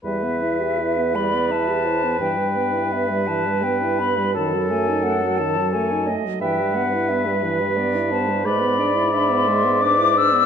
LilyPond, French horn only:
\new Staff \with { instrumentName = "French horn" } { \time 3/4 \key e \minor \tempo 4 = 86 g16 b16 e'16 g'16 e'16 b16 g16 b16 e'16 g'16 e'16 b16 | e16 g16 b16 e'16 b16 g16 e16 g16 b16 e'16 b16 g16 | dis16 fis16 a16 dis'16 a16 fis16 dis16 fis16 a16 dis'16 a16 fis16 | e16 g16 b16 e'16 b16 g16 e16 g16 b16 e'16 b16 g16 |
gis16 b16 d'16 e'16 d'16 b16 gis16 b16 d'16 e'16 d'16 b16 | }